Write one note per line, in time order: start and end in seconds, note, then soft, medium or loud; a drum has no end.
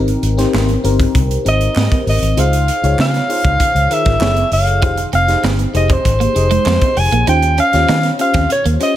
0.00 0.13 G#1 loud
0.00 0.21 C4 loud
0.00 0.21 D#4 medium
0.00 0.22 G4 medium
0.00 0.22 A#4 loud
0.08 closed hi-hat medium
0.23 0.44 G#1 loud
0.23 closed hi-hat medium
0.37 0.67 C4 medium
0.37 0.67 D#4 medium
0.37 0.67 G4 medium
0.37 0.68 C5 loud
0.37 snare soft
0.37 closed hi-hat medium
0.54 0.75 G#1 loud
0.54 snare loud
0.54 clap medium
0.69 closed hi-hat soft
0.84 1.05 G1 loud
0.84 1.23 C4 medium
0.84 1.23 D#4 medium
0.84 1.23 G4 medium
0.84 1.24 A#4 loud
0.84 closed hi-hat medium
0.99 kick medium
0.99 closed hi-hat medium
1.15 1.36 C2 loud
1.15 kick loud
1.15 closed hi-hat loud
1.31 closed hi-hat medium
1.45 1.66 G#1 loud
1.45 2.04 C4 medium
1.45 2.04 D#4 medium
1.45 2.04 G4 medium
1.45 2.04 A#4 medium
1.45 2.04 D#5 loud
1.45 closed hi-hat medium
1.61 closed hi-hat medium
1.76 1.87 G#2 medium
1.76 snare loud
1.76 clap medium
1.92 kick loud
1.92 closed hi-hat soft
2.07 2.17 G#1 loud
2.07 2.41 D#5 loud
2.07 open hi-hat medium
2.22 2.32 G#1 loud
2.22 closed hi-hat medium
2.37 2.69 C#2 loud
2.37 2.66 D#4 medium
2.37 2.67 F4 medium
2.37 2.67 G#4 medium
2.37 2.67 C5 medium
2.37 3.00 F5 loud
2.37 closed hi-hat medium
2.53 closed hi-hat medium
2.68 closed hi-hat medium
2.83 2.94 C#2 medium
2.83 3.13 D#4 medium
2.83 3.13 F4 medium
2.83 3.13 G#4 medium
2.83 3.13 C#5 medium
2.83 closed hi-hat soft
2.98 3.19 C#3 loud
2.98 3.94 F5 loud
2.98 snare loud
2.98 clap medium
3.14 snare soft
3.14 closed hi-hat soft
3.29 3.68 D#4 medium
3.29 3.69 F4 medium
3.29 3.69 G#4 medium
3.29 3.69 C5 medium
3.29 open hi-hat medium
3.45 3.55 C#2 medium
3.45 kick medium
3.45 closed hi-hat medium
3.60 kick medium
3.60 closed hi-hat medium
3.75 3.85 C#2 medium
3.75 closed hi-hat medium
3.90 4.21 D#3 medium
3.90 4.21 F4 medium
3.90 4.20 G#4 medium
3.90 4.22 A#4 medium
3.90 4.53 E5 loud
3.90 closed hi-hat medium
4.05 4.16 G#1 loud
4.05 kick medium
4.05 snare soft
4.05 closed hi-hat soft
4.21 4.42 F#1 loud
4.21 4.70 E4 medium
4.21 4.70 G#4 medium
4.21 4.70 A4 medium
4.21 4.71 C#5 medium
4.21 snare loud
4.21 clap medium
4.37 closed hi-hat soft
4.51 4.82 F#1 loud
4.51 5.10 F5 loud
4.51 open hi-hat medium
4.67 closed hi-hat medium
4.82 5.03 F1 loud
4.82 5.11 D#4 medium
4.82 4.96 F4 loud
4.82 5.12 G4 medium
4.82 5.12 G#4 medium
4.82 5.12 C5 medium
4.82 kick loud
4.82 closed hi-hat medium
4.97 muted clean electric guitar stroke medium
4.97 closed hi-hat medium
5.13 5.34 F1 loud
5.13 5.26 C4 medium
5.13 5.46 F5 loud
5.13 closed hi-hat medium
5.28 5.57 D#4 medium
5.28 5.58 G4 medium
5.28 5.58 G#4 medium
5.28 5.58 C5 medium
5.28 snare soft
5.28 closed hi-hat soft
5.43 5.64 G1 loud
5.43 5.57 D#4 medium
5.43 snare loud
5.43 clap medium
5.59 closed hi-hat soft
5.74 5.95 F1 medium
5.74 6.13 D#4 medium
5.74 6.13 G4 medium
5.74 6.13 G#4 medium
5.74 6.14 C5 medium
5.74 5.94 D#5 loud
5.74 muted clean electric guitar stroke soft
5.74 closed hi-hat medium
5.90 6.03 C4 medium
5.90 7.00 C5 loud
5.90 kick loud
5.90 closed hi-hat medium
6.05 6.26 G#1 loud
6.05 kick medium
6.05 closed hi-hat loud
6.20 6.33 A#3 medium
6.20 closed hi-hat medium
6.35 6.57 F1 loud
6.35 6.94 D#4 medium
6.35 6.94 G4 medium
6.35 6.94 G#4 medium
6.35 6.95 D#5 medium
6.35 muted clean electric guitar stroke soft
6.35 closed hi-hat medium
6.51 6.64 G#3 medium
6.51 closed hi-hat soft
6.66 6.76 F2 loud
6.66 6.79 G#3 medium
6.66 snare loud
6.66 clap medium
6.81 kick medium
6.81 closed hi-hat soft
6.97 7.07 F1 medium
6.97 7.28 G#5 loud
6.97 muted clean electric guitar stroke soft
6.97 open hi-hat medium
7.12 7.22 A#1 medium
7.12 7.25 A#3 medium
7.12 closed hi-hat medium
7.27 7.59 D#2 loud
7.27 7.57 C#4 medium
7.27 7.40 D#4 loud
7.27 7.57 F4 medium
7.27 7.57 G4 medium
7.27 7.57 C5 medium
7.27 7.57 G5 loud
7.27 closed hi-hat medium
7.42 muted clean electric guitar stroke medium
7.42 closed hi-hat medium
7.58 7.71 C#4 medium
7.58 8.16 F5 loud
7.58 closed hi-hat medium
7.73 7.84 D#2 medium
7.73 8.03 C#4 medium
7.73 8.03 F4 medium
7.73 8.03 G4 medium
7.73 8.03 C#5 medium
7.73 snare soft
7.73 closed hi-hat medium
7.89 8.10 D#3 loud
7.89 8.02 D#4 loud
7.89 snare loud
7.89 clap medium
8.03 snare soft
8.03 closed hi-hat soft
8.19 8.58 C#4 medium
8.19 8.59 F4 medium
8.19 8.59 G4 medium
8.19 8.59 C5 medium
8.19 8.49 F5 loud
8.19 muted clean electric guitar stroke soft
8.19 closed hi-hat medium
8.34 8.45 D#2 medium
8.34 8.48 C4 medium
8.34 kick medium
8.34 snare soft
8.34 closed hi-hat medium
8.50 8.65 C#5 loud
8.50 closed hi-hat medium
8.65 8.76 D#2 loud
8.65 8.78 A#3 medium
8.65 closed hi-hat medium
8.80 8.96 C#4 medium
8.80 8.96 F4 medium
8.80 8.96 G4 medium
8.80 8.96 C5 medium
8.80 8.96 D#5 loud
8.80 muted clean electric guitar stroke medium
8.80 closed hi-hat medium